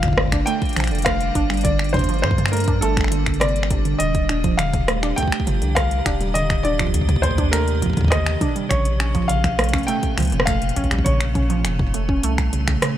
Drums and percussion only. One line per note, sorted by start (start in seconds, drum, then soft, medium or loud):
0.03 finger snap medium
0.03 kick loud
0.03 closed hi-hat soft
0.03 mid tom medium
0.08 kick medium
0.13 kick medium
0.18 kick medium
0.18 cross-stick loud
0.23 kick soft
0.27 kick soft
0.32 finger snap medium
0.32 kick loud
0.32 closed hi-hat soft
0.47 closed hi-hat medium
0.62 kick loud
0.62 closed hi-hat soft
0.65 closed hi-hat soft
0.69 closed hi-hat soft
0.73 finger snap soft
0.73 closed hi-hat soft
0.76 finger snap soft
0.76 closed hi-hat medium
0.76 mid tom medium
0.80 finger snap soft
0.80 closed hi-hat soft
0.84 finger snap soft
0.84 closed hi-hat soft
0.87 closed hi-hat soft
0.91 closed hi-hat soft
0.95 closed hi-hat soft
0.98 closed hi-hat soft
1.02 finger snap medium
1.02 cross-stick loud
1.02 closed hi-hat soft
1.06 kick loud
1.06 closed hi-hat loud
1.21 closed hi-hat soft
1.35 kick loud
1.35 closed hi-hat medium
1.50 finger snap soft
1.50 closed hi-hat soft
1.54 closed hi-hat soft
1.57 closed hi-hat soft
1.61 closed hi-hat soft
1.65 kick loud
1.65 closed hi-hat medium
1.79 finger snap medium
1.79 closed hi-hat soft
1.84 closed hi-hat soft
1.89 closed hi-hat soft
1.94 kick loud
1.94 closed hi-hat soft
1.94 mid tom medium
1.97 kick medium
1.97 closed hi-hat soft
1.99 kick medium
2.02 kick medium
2.02 closed hi-hat soft
2.04 kick soft
2.06 kick soft
2.06 closed hi-hat soft
2.24 finger snap medium
2.31 kick loud
2.38 closed hi-hat soft
2.38 mid tom medium
2.46 finger snap medium
2.46 closed hi-hat soft
2.53 closed hi-hat medium
2.57 closed hi-hat medium
2.57 closed hi-hat soft
2.60 closed hi-hat soft
2.64 kick loud
2.64 closed hi-hat soft
2.82 closed hi-hat medium
2.97 finger snap soft
2.97 kick loud
2.97 closed hi-hat soft
3.01 finger snap soft
3.04 finger snap soft
3.08 finger snap soft
3.08 closed hi-hat medium
3.26 finger snap medium
3.26 kick loud
3.26 closed hi-hat soft
3.34 closed hi-hat soft
3.41 cross-stick loud
3.41 closed hi-hat medium
3.49 closed hi-hat soft
3.56 closed hi-hat soft
3.63 finger snap medium
3.70 kick loud
3.70 closed hi-hat medium
3.85 closed hi-hat soft
4.00 closed hi-hat medium
4.15 kick loud
4.15 closed hi-hat soft
4.29 finger snap medium
4.29 closed hi-hat soft
4.44 kick loud
4.44 closed hi-hat soft
4.59 finger snap medium
4.59 closed hi-hat medium
4.73 kick loud
4.73 closed hi-hat soft
4.73 mid tom medium
4.88 cross-stick loud
4.88 closed hi-hat medium
5.03 finger snap medium
5.03 closed hi-hat soft
5.18 kick medium
5.18 closed hi-hat medium
5.23 kick medium
5.27 kick loud
5.32 finger snap medium
5.32 closed hi-hat soft
5.40 kick loud
5.47 closed hi-hat medium
5.47 mid tom medium
5.62 closed hi-hat soft
5.76 finger snap medium
5.76 kick loud
5.76 cross-stick loud
5.76 closed hi-hat medium
5.91 closed hi-hat soft
6.06 finger snap medium
6.06 kick loud
6.06 closed hi-hat medium
6.21 closed hi-hat soft
6.35 closed hi-hat medium
6.50 finger snap medium
6.50 kick loud
6.50 closed hi-hat soft
6.65 closed hi-hat soft
6.79 finger snap medium
6.79 kick loud
6.79 closed hi-hat soft
6.87 kick medium
6.94 kick medium
6.94 closed hi-hat medium
7.01 kick medium
7.09 kick loud
7.09 closed hi-hat soft
7.09 mid tom loud
7.16 kick medium
7.23 kick medium
7.23 closed hi-hat medium
7.31 kick medium
7.38 kick loud
7.38 closed hi-hat soft
7.53 finger snap medium
7.53 closed hi-hat medium
7.68 closed hi-hat soft
7.82 kick medium
7.82 closed hi-hat medium
7.86 kick medium
7.90 kick medium
7.93 kick medium
7.93 closed hi-hat soft
7.97 kick medium
8.01 kick medium
8.04 kick loud
8.08 finger snap medium
8.08 kick loud
8.08 cross-stick loud
8.08 closed hi-hat medium
8.12 kick loud
8.26 finger snap medium
8.26 closed hi-hat soft
8.41 kick loud
8.41 closed hi-hat medium
8.41 mid tom loud
8.56 closed hi-hat soft
8.71 finger snap medium
8.71 kick loud
8.71 closed hi-hat medium
8.85 closed hi-hat soft
9.00 finger snap medium
9.00 closed hi-hat soft
9.15 kick loud
9.15 closed hi-hat soft
9.29 closed hi-hat medium
9.44 finger snap medium
9.44 kick loud
9.44 closed hi-hat soft
9.44 mid tom loud
9.59 cross-stick loud
9.59 closed hi-hat medium
9.64 closed hi-hat soft
9.69 closed hi-hat soft
9.73 finger snap medium
9.73 kick loud
9.73 closed hi-hat soft
9.78 closed hi-hat soft
9.83 closed hi-hat soft
9.88 closed hi-hat medium
10.03 kick loud
10.03 closed hi-hat soft
10.18 finger snap medium
10.18 closed hi-hat medium
10.18 mid tom medium
10.20 closed hi-hat medium
10.22 closed hi-hat soft
10.25 closed hi-hat soft
10.27 closed hi-hat soft
10.30 closed hi-hat soft
10.32 closed hi-hat soft
10.40 cross-stick loud
10.47 finger snap medium
10.47 kick loud
10.47 closed hi-hat medium
10.62 closed hi-hat soft
10.69 closed hi-hat soft
10.76 kick soft
10.76 closed hi-hat medium
10.84 kick medium
10.84 closed hi-hat soft
10.91 finger snap medium
10.91 kick medium
10.91 closed hi-hat soft
10.99 kick medium
11.06 kick loud
11.06 closed hi-hat medium
11.21 finger snap medium
11.21 closed hi-hat soft
11.35 kick loud
11.35 closed hi-hat soft
11.35 mid tom medium
11.50 closed hi-hat soft
11.65 finger snap medium
11.65 closed hi-hat loud
11.79 kick loud
11.79 mid tom loud
11.94 closed hi-hat medium
12.09 kick loud
12.23 closed hi-hat loud
12.38 finger snap medium
12.38 kick loud
12.38 closed hi-hat soft
12.53 closed hi-hat medium
12.68 finger snap medium
12.68 kick loud
12.68 closed hi-hat soft
12.82 cross-stick loud
12.82 closed hi-hat loud